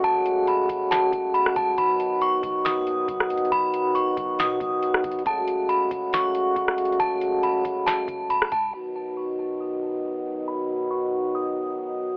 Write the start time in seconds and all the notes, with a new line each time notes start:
Already playing: C#3 F#3 G#3 A3 F#4
0.04 F#1 A5, kick, closed hi-hat
0.26 closed hi-hat
0.47 B5, closed hi-hat
0.69 F#1, kick, closed hi-hat
0.91 A5, snare, closed hi-hat
1.12 F#1, kick, closed hi-hat
1.34 B5, closed hi-hat
1.46 cross-stick
1.56 C#2 A5, kick, closed hi-hat
1.78 B1 B2 D#3 D#4 B5, kick, closed hi-hat
2.00 closed hi-hat
2.21 C#6, closed hi-hat
2.43 B1, kick, closed hi-hat
2.65 D#6, snare, closed hi-hat
2.76 D#2
2.87 closed hi-hat
2.92 B1
3.08 B1, kick, closed hi-hat
3.20 cross-stick
3.30 D#2, closed hi-hat
3.38 B1, closed hi-hat
3.45 closed hi-hat
3.52 B1 B5, kick, closed hi-hat
3.74 closed hi-hat
3.95 C#6, closed hi-hat
4.17 B1, kick, closed hi-hat
4.39 B2 D#6, snare, closed hi-hat
4.60 B1, kick, closed hi-hat
4.82 closed hi-hat
4.94 cross-stick
5.04 B1, kick, closed hi-hat
5.11 closed hi-hat
5.19 closed hi-hat
5.26 F#1 C#3 F#3 G#3 A3 F#4 A5, kick, closed hi-hat
5.48 closed hi-hat
5.69 B5, closed hi-hat
5.91 F#1, kick, closed hi-hat
6.13 C#6, snare, closed hi-hat
6.35 closed hi-hat
6.56 F#1, kick, closed hi-hat
6.68 cross-stick
6.78 closed hi-hat
6.85 closed hi-hat
6.92 closed hi-hat
7.00 F#1 A5, kick, closed hi-hat
7.21 closed hi-hat
7.43 B5, closed hi-hat
7.65 F#1, kick, closed hi-hat
7.87 A5, snare, closed hi-hat
8.08 F#1, kick, closed hi-hat
8.30 B5, closed hi-hat
8.42 cross-stick
8.52 C#2 A5, kick, closed hi-hat
8.73 B2 D#3 F#3 D#4 F#4 B5
9.17 C#6
9.60 D#6
10.48 B5
10.91 C#6
11.35 D#6